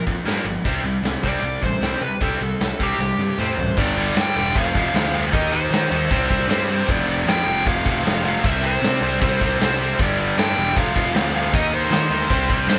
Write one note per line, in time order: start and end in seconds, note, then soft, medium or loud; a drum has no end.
0.06 0.18 F2 medium
0.06 0.24 A#2 medium
0.06 0.24 F3 medium
0.06 kick medium
0.06 open hi-hat medium
0.25 0.37 G2 medium
0.25 0.43 A#2 medium
0.25 0.44 F3 medium
0.25 0.44 A#3 loud
0.25 snare loud
0.25 open hi-hat medium
0.45 0.57 G1 medium
0.45 0.63 A#2 medium
0.45 0.63 F3 medium
0.45 open hi-hat medium
0.64 0.76 C2 medium
0.64 0.83 C3 medium
0.64 0.83 G3 medium
0.64 0.83 C4 medium
0.64 kick loud
0.64 open hi-hat medium
0.84 0.96 C2 medium
0.84 1.02 C3 medium
0.84 1.02 G3 medium
0.84 open hi-hat medium
1.02 1.15 C2 medium
1.02 1.21 C3 medium
1.02 1.21 G3 medium
1.02 snare loud
1.02 open hi-hat medium
1.22 1.35 C2 medium
1.22 1.41 C3 medium
1.22 1.42 G3 loud
1.22 1.42 C4 loud
1.22 1.60 D5 loud
1.22 kick medium
1.22 open hi-hat medium
1.42 1.55 C2 medium
1.42 1.60 C3 medium
1.42 1.61 G3 medium
1.42 open hi-hat medium
1.62 1.75 A1 medium
1.62 1.79 C3 medium
1.62 1.80 G3 medium
1.62 2.02 C5 medium
1.62 kick medium
1.62 open hi-hat soft
1.81 1.93 C2 medium
1.81 2.00 C3 loud
1.81 2.00 G3 medium
1.81 2.00 C4 loud
1.81 snare loud
1.81 open hi-hat medium
2.01 2.19 C3 medium
2.01 2.13 C3 medium
2.01 2.19 G3 medium
2.01 2.21 B4 medium
2.01 open hi-hat soft
2.21 2.33 C2 medium
2.21 2.39 C3 medium
2.21 2.39 G3 medium
2.21 2.40 C4 loud
2.21 2.82 A4 medium
2.21 kick loud
2.21 open hi-hat medium
2.40 2.53 C2 medium
2.40 2.58 C3 medium
2.40 2.58 G3 medium
2.40 open hi-hat soft
2.60 2.72 C2 medium
2.60 2.78 C3 medium
2.60 2.78 G3 medium
2.60 snare loud
2.60 open hi-hat medium
2.79 2.92 C2 medium
2.79 2.98 C3 medium
2.79 2.98 G3 medium
2.79 2.99 C4 loud
2.79 3.56 G4 medium
2.79 kick medium
2.79 open hi-hat medium
2.99 3.11 C2 medium
2.99 3.17 C3 medium
2.99 3.17 G3 medium
2.99 snare medium
3.18 3.31 G2 medium
3.18 3.37 C3 medium
3.18 3.37 G3 medium
3.18 high tom medium
3.38 3.51 A2 medium
3.38 3.57 C3 medium
3.38 3.57 G3 medium
3.38 3.57 C4 loud
3.38 3.75 C5 medium
3.38 mid tom medium
3.57 3.70 A1 medium
3.57 3.76 C3 medium
3.57 3.76 G3 medium
3.57 floor tom medium
3.77 4.10 G1 loud
3.77 3.97 G2 loud
3.77 3.98 D3 loud
3.77 3.98 G3 loud
3.77 4.18 D5 loud
3.77 kick loud
3.77 crash loud
3.77 crash medium
3.97 4.15 G2 medium
3.97 4.16 D3 medium
3.97 4.17 G3 medium
3.97 crash medium
4.16 4.33 G2 medium
4.16 4.35 G2 medium
4.16 4.35 D3 medium
4.16 4.36 G3 loud
4.16 4.58 G5 loud
4.16 snare loud
4.16 crash medium
4.36 4.55 E1 medium
4.36 4.55 G2 medium
4.36 4.55 D3 medium
4.36 4.55 G3 medium
4.36 crash medium
4.55 4.71 F1 medium
4.55 4.74 F2 medium
4.55 4.75 C3 loud
4.55 4.75 F3 loud
4.55 5.10 F5 loud
4.55 kick loud
4.55 crash medium
4.75 4.91 F1 medium
4.75 4.94 F2 medium
4.75 4.94 C3 medium
4.75 4.95 F3 medium
4.75 kick medium
4.75 crash medium
4.93 5.33 D2 medium
4.93 5.12 F2 medium
4.93 5.13 C3 loud
4.93 5.14 F3 loud
4.93 snare loud
4.93 crash medium
5.13 5.32 F2 medium
5.13 5.32 C3 medium
5.13 5.33 F3 medium
5.13 5.19 F5 medium
5.13 crash medium
5.33 5.66 D#2 loud
5.33 5.52 D#3 medium
5.33 5.52 A#3 loud
5.33 5.53 D#4 loud
5.33 5.54 D#5 loud
5.33 kick loud
5.33 crash medium
5.52 5.71 D#3 medium
5.52 5.72 A#3 medium
5.52 5.72 D#4 medium
5.52 6.46 C5 loud
5.52 crash medium
5.71 5.88 D#3 medium
5.71 5.90 D#3 medium
5.71 5.90 A#3 loud
5.71 5.90 D#4 loud
5.71 snare loud
5.71 crash medium
5.91 6.08 D#2 medium
5.91 6.10 D#3 medium
5.91 6.10 A#3 medium
5.91 6.10 D#4 medium
5.91 crash medium
6.11 6.27 C2 medium
6.11 6.29 C3 medium
6.11 6.29 G3 loud
6.11 6.31 C4 loud
6.11 kick loud
6.11 crash medium
6.30 6.47 C2 medium
6.30 6.48 C3 medium
6.30 6.48 G3 medium
6.30 6.50 C4 loud
6.30 kick medium
6.30 crash medium
6.48 6.81 G2 loud
6.48 6.67 C3 medium
6.48 6.69 G3 medium
6.48 6.69 C4 loud
6.48 6.90 C5 medium
6.48 snare loud
6.48 crash medium
6.69 6.86 C3 medium
6.69 6.88 G3 loud
6.69 8.43 C4 medium
6.69 crash medium
6.86 7.21 F1 loud
6.86 7.04 F2 medium
6.86 7.05 C3 loud
6.86 7.05 F3 loud
6.86 kick loud
6.86 crash medium
6.91 7.30 D5 loud
7.06 7.25 F2 medium
7.06 7.26 C3 medium
7.06 7.26 F3 loud
7.06 crash medium
7.26 7.43 F2 medium
7.26 7.44 F2 medium
7.26 7.45 C3 loud
7.26 7.45 F3 loud
7.26 7.68 G5 loud
7.26 snare loud
7.26 crash medium
7.45 7.62 F1 medium
7.45 7.64 F2 medium
7.45 7.65 C3 medium
7.45 7.65 F3 loud
7.45 crash medium
7.65 7.82 F1 loud
7.65 7.83 F2 medium
7.65 7.84 C3 loud
7.65 7.84 F3 loud
7.65 8.24 F5 loud
7.65 kick loud
7.65 crash medium
7.84 8.02 F1 medium
7.84 8.03 F2 medium
7.84 8.03 C3 medium
7.84 8.03 F3 loud
7.84 kick medium
7.84 crash medium
8.03 8.37 F1 medium
8.03 8.23 F2 medium
8.03 8.23 C3 loud
8.03 8.24 F3 medium
8.03 snare loud
8.03 crash medium
8.24 8.43 F2 medium
8.24 8.41 C3 loud
8.24 8.42 F3 loud
8.24 8.45 F5 medium
8.24 crash medium
8.42 8.76 C2 loud
8.42 8.61 C3 medium
8.42 8.62 G3 loud
8.42 8.62 C4 loud
8.42 kick loud
8.42 crash medium
8.47 8.65 E5 loud
8.63 8.80 C3 medium
8.63 8.80 G3 medium
8.63 8.81 C4 loud
8.63 9.58 C5 medium
8.63 crash medium
8.81 8.99 C3 medium
8.81 8.98 C3 medium
8.81 9.00 G3 medium
8.81 9.01 C4 loud
8.81 snare loud
8.81 crash medium
9.01 9.18 C2 medium
9.01 9.19 C3 medium
9.01 9.19 G3 medium
9.01 9.20 C4 loud
9.01 crash medium
9.20 9.38 C2 loud
9.20 9.39 C3 medium
9.20 9.39 G3 loud
9.20 9.40 C4 loud
9.20 kick loud
9.20 crash medium
9.33 snare soft
9.40 9.57 C2 medium
9.40 9.58 C3 medium
9.40 9.59 G3 medium
9.40 9.59 C4 medium
9.40 kick medium
9.40 crash medium
9.59 9.92 C2 medium
9.59 9.78 C3 medium
9.59 9.78 G3 medium
9.59 9.79 C4 loud
9.59 snare loud
9.59 crash medium
9.63 9.98 C5 medium
9.79 9.97 C3 medium
9.79 9.97 G3 medium
9.79 9.98 C4 loud
9.79 crash medium
9.99 10.31 G1 loud
9.99 10.17 G2 loud
9.99 10.18 D3 medium
9.99 10.18 G3 loud
9.99 10.36 D5 medium
9.99 kick loud
9.99 crash medium
10.18 10.37 G2 medium
10.18 10.37 D3 medium
10.18 10.38 G3 medium
10.18 crash medium
10.37 10.53 G2 medium
10.37 10.57 G2 medium
10.37 10.57 D3 medium
10.37 10.58 G3 loud
10.37 10.78 G5 loud
10.37 snare loud
10.37 crash medium
10.57 10.73 E1 medium
10.57 10.76 G2 medium
10.57 10.76 D3 loud
10.57 10.76 G3 medium
10.57 crash medium
10.76 10.92 F1 medium
10.76 10.94 F2 loud
10.76 10.95 C3 medium
10.76 10.95 F3 loud
10.76 11.35 F5 loud
10.76 kick loud
10.76 crash medium
10.88 snare soft
10.95 11.12 F1 medium
10.95 11.12 F2 medium
10.95 11.13 C3 medium
10.95 11.13 F3 medium
10.95 kick medium
10.95 crash medium
11.14 11.53 D2 medium
11.14 11.32 F2 loud
11.14 11.32 C3 loud
11.14 11.32 F3 loud
11.14 snare loud
11.14 crash medium
11.33 11.51 F2 medium
11.33 11.52 C3 medium
11.33 11.52 F3 medium
11.33 11.54 F5 medium
11.33 crash medium
11.52 11.85 D#2 loud
11.52 11.69 D#3 loud
11.52 11.69 A#3 loud
11.52 11.70 D#4 loud
11.52 11.74 D#5 medium
11.52 kick loud
11.52 crash medium
11.70 11.89 D#3 medium
11.70 11.90 A#3 medium
11.70 11.90 D#4 medium
11.70 12.68 C5 loud
11.70 crash medium
11.90 12.08 D#3 loud
11.90 12.07 D#3 loud
11.90 12.09 A#3 loud
11.90 12.10 D#4 loud
11.90 snare loud
11.90 crash medium
12.09 12.26 D2 medium
12.09 12.28 D#3 medium
12.09 12.29 A#3 medium
12.09 12.29 D#4 loud
12.09 crash medium
12.29 12.46 C2 medium
12.29 12.48 C3 medium
12.29 12.49 G3 loud
12.29 12.50 C4 loud
12.29 kick loud
12.29 crash medium
12.49 12.66 C2 medium
12.49 12.67 C3 medium
12.49 12.67 G3 medium
12.49 12.69 C4 medium
12.49 kick medium
12.49 crash medium
12.67 12.79 G2 loud
12.67 12.79 C3 medium
12.67 12.79 G3 loud
12.67 12.79 C4 loud
12.67 12.79 C5 medium
12.67 snare loud
12.67 crash medium